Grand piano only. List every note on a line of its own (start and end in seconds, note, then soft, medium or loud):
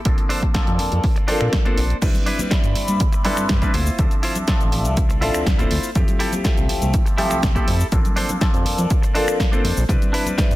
0.05 0.52 F3 medium
0.05 0.52 A#3 medium
0.05 0.52 C4 medium
0.05 0.52 D4 medium
0.05 0.52 A4 medium
0.54 1.25 F3 medium
0.54 1.25 A#3 medium
0.54 1.25 C4 medium
0.54 1.26 D4 medium
0.54 1.26 A4 loud
1.28 1.62 F3 medium
1.28 1.63 A#3 medium
1.28 1.63 C4 medium
1.28 1.63 D4 medium
1.28 1.63 A4 loud
1.65 1.76 F3 medium
1.65 1.76 A#3 medium
1.65 1.76 C4 medium
1.65 1.76 D4 medium
1.65 1.77 A4 medium
2.02 2.48 G3 medium
2.02 2.48 C4 medium
2.02 2.48 D4 medium
2.02 2.49 E4 medium
2.02 2.49 B4 medium
2.51 3.22 G3 medium
2.51 3.22 C4 medium
2.51 3.22 D4 medium
2.51 3.22 E4 medium
2.51 3.23 B5 loud
3.24 3.59 G3 medium
3.24 3.59 C4 medium
3.24 3.59 D4 medium
3.24 3.59 E4 medium
3.24 3.59 B4 loud
3.62 3.73 G3 medium
3.62 3.73 C4 medium
3.62 3.73 D4 medium
3.62 3.73 E4 medium
3.62 3.73 B4 medium
3.98 4.45 F3 medium
3.98 4.45 C4 medium
3.98 4.45 D4 medium
3.98 4.45 A4 medium
3.98 4.45 E5 medium
4.47 5.19 F3 medium
4.47 5.19 C4 medium
4.47 5.19 D4 medium
4.47 5.19 A4 loud
4.47 5.19 E5 medium
5.21 5.56 F3 medium
5.21 5.56 C4 medium
5.21 5.56 D4 medium
5.21 5.56 A4 loud
5.21 5.56 E5 medium
5.59 5.70 F3 medium
5.59 5.70 C4 medium
5.59 5.70 D4 medium
5.59 5.70 E4 medium
5.59 5.70 A4 medium
5.95 6.42 F3 medium
5.95 6.42 A3 medium
5.95 6.42 C4 medium
5.95 6.42 E4 medium
5.95 6.42 G4 medium
6.44 7.15 F3 medium
6.44 7.16 A3 medium
6.44 7.16 C4 medium
6.44 7.16 E4 medium
6.44 7.16 G4 loud
7.18 7.52 F3 loud
7.18 7.53 A3 medium
7.18 7.53 C4 medium
7.18 7.53 E4 medium
7.18 7.53 G4 loud
7.56 7.66 F3 medium
7.56 7.67 A3 medium
7.56 7.67 C4 medium
7.56 7.67 E4 medium
7.56 7.67 G4 medium
7.92 8.39 F3 medium
7.92 8.39 A#3 medium
7.92 8.39 C4 medium
7.92 8.39 D4 medium
7.92 8.39 A4 medium
8.41 9.12 F3 medium
8.41 9.12 A#3 medium
8.41 9.13 C4 medium
8.41 9.13 D4 medium
8.41 9.13 A4 loud
9.15 9.49 F3 medium
9.15 9.49 A#3 medium
9.15 9.49 C4 medium
9.15 9.50 D4 medium
9.15 9.50 A4 loud
9.52 9.63 F3 medium
9.52 9.63 A#3 medium
9.52 9.63 C4 medium
9.52 9.63 D4 medium
9.52 9.63 A4 medium
9.89 10.35 G3 medium
9.89 10.35 C4 medium
9.89 10.35 D4 medium
9.89 10.36 E4 medium
9.89 10.36 B4 medium
10.38 10.56 G3 medium
10.38 10.56 C4 medium
10.38 10.56 D4 medium
10.38 10.56 E4 medium
10.38 10.56 B4 loud